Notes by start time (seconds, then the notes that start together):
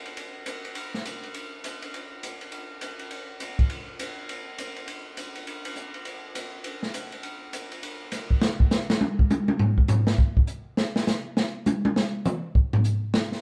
0.06 ride
0.17 ride
0.46 hi-hat pedal, ride
0.65 ride
0.75 ride
0.94 snare
1.05 hi-hat pedal, ride
1.23 ride
1.34 ride
1.64 hi-hat pedal, ride
1.82 ride
1.94 ride
2.23 hi-hat pedal, ride
2.41 ride
2.52 ride
2.81 hi-hat pedal, ride
2.99 ride
3.11 ride
3.40 hi-hat pedal, ride
3.59 kick, ride
3.70 ride
3.99 hi-hat pedal, ride
4.29 ride
4.58 hi-hat pedal, ride
4.76 ride
4.88 ride
5.17 hi-hat pedal, ride
5.35 ride
5.47 ride
5.65 ride
5.76 hi-hat pedal
5.94 ride
6.05 ride
6.35 hi-hat pedal, ride
6.64 ride
6.83 snare
6.94 hi-hat pedal, ride
7.12 ride
7.23 ride
7.53 hi-hat pedal, ride
7.72 ride
7.83 ride
8.12 snare, hi-hat pedal, ride
8.31 kick
8.42 snare
8.60 kick
8.71 snare, hi-hat pedal
8.90 snare
9.01 high tom
9.19 kick
9.30 hi-hat pedal, high tom
9.48 high tom
9.59 floor tom
9.78 kick
9.88 floor tom, hi-hat pedal
10.07 snare
10.18 kick
10.37 kick
10.47 hi-hat pedal
10.77 snare
10.96 snare
11.07 snare, hi-hat pedal
11.37 snare
11.66 hi-hat pedal, high tom
11.85 high tom
11.96 snare
12.25 hi-hat pedal, mid tom
12.55 kick
12.73 floor tom
12.84 hi-hat pedal
13.14 snare
13.32 snare